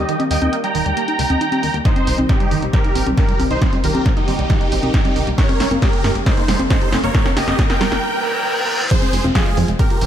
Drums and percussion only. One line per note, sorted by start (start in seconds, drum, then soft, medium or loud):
0.09 closed hi-hat medium
0.20 closed hi-hat soft
0.20 high conga medium
0.31 open hi-hat loud
0.42 closed hi-hat soft
0.42 high conga medium
0.53 closed hi-hat medium
0.64 closed hi-hat soft
0.75 open hi-hat medium
0.86 closed hi-hat soft
0.97 closed hi-hat medium
1.08 closed hi-hat soft
1.19 open hi-hat loud
1.30 closed hi-hat soft
1.30 high conga medium
1.41 closed hi-hat medium
1.52 closed hi-hat soft
1.52 high conga medium
1.63 open hi-hat medium
1.74 closed hi-hat soft
1.85 kick loud
1.85 snare soft
1.85 closed hi-hat medium
1.96 closed hi-hat soft
1.96 high conga medium
2.07 open hi-hat loud
2.18 closed hi-hat soft
2.18 high conga medium
2.29 kick loud
2.29 snare soft
2.29 closed hi-hat medium
2.40 closed hi-hat soft
2.51 open hi-hat medium
2.62 closed hi-hat soft
2.73 kick loud
2.73 snare medium
2.73 closed hi-hat medium
2.84 closed hi-hat soft
2.95 open hi-hat loud
3.07 closed hi-hat soft
3.07 high conga medium
3.18 kick loud
3.18 snare medium
3.18 closed hi-hat medium
3.29 closed hi-hat soft
3.40 open hi-hat medium
3.40 high conga medium
3.51 closed hi-hat soft
3.62 kick loud
3.62 snare medium
3.62 closed hi-hat medium
3.73 closed hi-hat medium
3.73 high conga medium
3.84 open hi-hat loud
3.95 closed hi-hat soft
3.95 high conga medium
4.06 kick loud
4.06 snare medium
4.06 closed hi-hat medium
4.17 closed hi-hat soft
4.28 open hi-hat medium
4.39 closed hi-hat medium
4.50 kick loud
4.50 snare medium
4.50 closed hi-hat medium
4.61 closed hi-hat medium
4.72 open hi-hat loud
4.83 closed hi-hat medium
4.83 high conga medium
4.94 kick loud
4.94 snare medium
4.94 closed hi-hat medium
5.05 closed hi-hat medium
5.05 high conga medium
5.16 open hi-hat medium
5.27 closed hi-hat medium
5.38 kick loud
5.38 snare medium
5.38 closed hi-hat medium
5.49 closed hi-hat medium
5.49 high conga medium
5.60 snare medium
5.60 open hi-hat loud
5.71 closed hi-hat medium
5.71 high conga medium
5.82 kick loud
5.82 snare medium
5.82 closed hi-hat medium
5.93 closed hi-hat medium
6.04 snare medium
6.04 open hi-hat medium
6.15 closed hi-hat medium
6.26 kick loud
6.26 snare medium
6.26 closed hi-hat medium
6.37 closed hi-hat medium
6.48 snare medium
6.48 open hi-hat loud
6.59 closed hi-hat medium
6.59 high conga medium
6.70 kick loud
6.70 snare medium
6.70 closed hi-hat medium
6.81 closed hi-hat medium
6.93 snare medium
6.93 open hi-hat medium
6.93 high conga medium
7.04 closed hi-hat medium
7.15 kick loud
7.15 snare medium
7.15 closed hi-hat medium
7.26 snare medium
7.26 closed hi-hat medium
7.26 high conga medium
7.37 snare medium
7.37 open hi-hat loud
7.48 snare medium
7.48 closed hi-hat medium
7.48 high conga medium
7.59 kick loud
7.59 snare loud
7.59 closed hi-hat medium
7.70 snare medium
7.70 closed hi-hat medium
7.81 snare loud
7.81 open hi-hat medium
7.92 snare medium
7.92 closed hi-hat medium
8.91 kick loud
8.91 closed hi-hat medium
8.91 crash loud
9.02 closed hi-hat medium
9.02 high conga medium
9.13 open hi-hat loud
9.24 closed hi-hat medium
9.24 high conga medium
9.35 kick loud
9.35 snare loud
9.35 closed hi-hat medium
9.46 closed hi-hat medium
9.57 open hi-hat loud
9.68 closed hi-hat medium
9.79 kick loud
9.79 closed hi-hat medium
9.90 closed hi-hat medium
10.01 open hi-hat loud